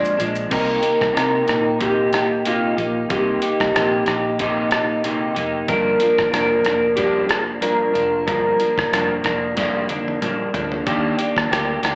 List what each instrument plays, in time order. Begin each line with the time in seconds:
Already playing: clean electric guitar A#2 F3 G#3 D4, electric slide guitar D5
0.05 shaker
0.17 fingered electric bass A#1, clean electric guitar F3 G#3 D4, closed hi-hat, shaker
0.35 shaker
0.50 fingered electric bass C2, clean electric guitar C3 A#3 D#4 G4, electric slide guitar A#4, kick, closed hi-hat, crash
0.82 clean electric guitar A#3 D#4 G4, closed hi-hat
1.01 fingered electric bass C2, kick, cross-stick
1.13 clean electric guitar C3 A#3 D#4 G4, fingered electric bass C3
1.17 electric slide guitar A#4, cross-stick, closed hi-hat
1.47 fingered electric bass A#2, clean electric guitar A#3 D#4 G4, cross-stick, closed hi-hat
1.79 clean electric guitar C3 A#3 D#4 G4, electric slide guitar G4, kick, closed hi-hat
2.13 clean electric guitar A#3 D#4 G4, electric slide guitar G4, cross-stick, closed hi-hat
2.45 clean electric guitar C3 A#3 D#4 G4, electric slide guitar F4, closed hi-hat
2.77 fingered electric bass A#1, clean electric guitar A#3 D#4 G4, closed hi-hat
3.09 fingered electric bass C2, clean electric guitar C3 A#3 D#4 G4, electric slide guitar G4, kick, closed hi-hat
3.42 clean electric guitar A#3 D#4 G4, closed hi-hat
3.60 fingered electric bass C2, kick, cross-stick
3.75 fingered electric bass A#1, clean electric guitar C3 A#3 D#4 G4, cross-stick, closed hi-hat
4.06 fingered electric bass A#1, clean electric guitar A#3 D#4 G4, cross-stick, closed hi-hat
4.39 clean electric guitar C3 A#3 D#4 G4, kick, closed hi-hat
4.71 clean electric guitar A#3 D#4 G4, cross-stick, closed hi-hat
5.03 clean electric guitar C3 A#3 D#4 G4, closed hi-hat
5.35 fingered electric bass F1, clean electric guitar A#3 D#4 G4, closed hi-hat
5.68 fingered electric bass G1, clean electric guitar G2 F3 A#3 D4, electric slide guitar A#4, kick, closed hi-hat
6.00 clean electric guitar F3 A#3 D4, closed hi-hat
6.18 fingered electric bass G1, kick, cross-stick
6.32 fingered electric bass F1, clean electric guitar G2 F3 A#3 D4, electric slide guitar A#4, cross-stick, closed hi-hat
6.65 fingered electric bass F1, clean electric guitar F3 D4, cross-stick, closed hi-hat
6.96 clean electric guitar G2 F3 A#3 D4, electric slide guitar G4, kick, closed hi-hat
7.28 clean electric guitar F3 A#3 D4, electric slide guitar G#4, cross-stick, closed hi-hat
7.60 clean electric guitar G2 F3 A#3 D4, electric slide guitar A#4, closed hi-hat
7.93 fingered electric bass F1, clean electric guitar F3 A#3 D4, closed hi-hat
8.27 fingered electric bass G1, clean electric guitar G2 F3 A#3 D4, electric slide guitar A#4, kick, closed hi-hat
8.59 clean electric guitar F3 A#3 D4, closed hi-hat
8.78 fingered electric bass G1, kick, cross-stick
8.92 fingered electric bass F1, clean electric guitar G2 F3 A#3 D4, cross-stick, closed hi-hat
9.24 fingered electric bass F1, clean electric guitar F3 A#3 D4, kick, cross-stick, closed hi-hat
9.56 clean electric guitar G2 F3 A#3 D4, kick, snare, closed hi-hat
9.89 clean electric guitar F3 A#3 D4, closed hi-hat, high tom
10.08 high tom
10.21 clean electric guitar G2 F3 A#3 D4, closed hi-hat, mid tom
10.54 fingered electric bass D2, clean electric guitar F3 A#3 D4, closed hi-hat, floor tom
10.72 floor tom
10.86 fingered electric bass D#2, clean electric guitar D#3 A#3 D4 G4, kick, closed hi-hat
11.19 clean electric guitar A#3 D4 G4, closed hi-hat
11.37 fingered electric bass D#2, kick, cross-stick
11.51 fingered electric bass D2, clean electric guitar A#3 D4 G4, cross-stick, closed hi-hat
11.83 fingered electric bass D2, clean electric guitar A#3 D4 G4, cross-stick, closed hi-hat